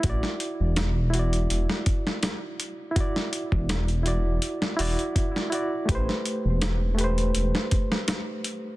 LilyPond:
<<
  \new Staff \with { instrumentName = "Reed electric piano" } { \time 4/4 \key d \mixolydian \tempo 4 = 82 <e' fis' d''>4. <e' fis' d''>2~ <e' fis' d''>8 | <e' fis' d''>4. <e' fis' d''>4 <e' fis' d''>4 <e' fis' d''>8 | <a g' b' c''>4. <a g' b' c''>2~ <a g' b' c''>8 | }
  \new Staff \with { instrumentName = "Detuned saw bass" } { \clef bass \time 4/4 \key d \mixolydian a,,16 r8 e,,4~ e,,16 e,,16 r4. r16 | r8. e,,4~ e,,16 r8 e,,16 r4 r16 | a,,16 r8 e,,4~ e,,16 e,,16 r4. r16 | }
  \new DrumStaff \with { instrumentName = "Drums" } \drummode { \time 4/4 <hh bd>16 sn16 hh8 <hh sn>8 hh16 hh16 hh16 sn16 <hh bd>16 sn16 <hh sn>8 hh8 | <hh bd>16 sn16 hh16 bd16 <hh sn>16 hh16 hh8 hh16 sn16 hho16 hh16 <hh bd>16 sn16 hh8 | <hh bd>16 sn16 hh8 <hh sn>8 hh16 hh16 hh16 sn16 <hh bd>16 sn16 <hh sn>8 hh8 | }
>>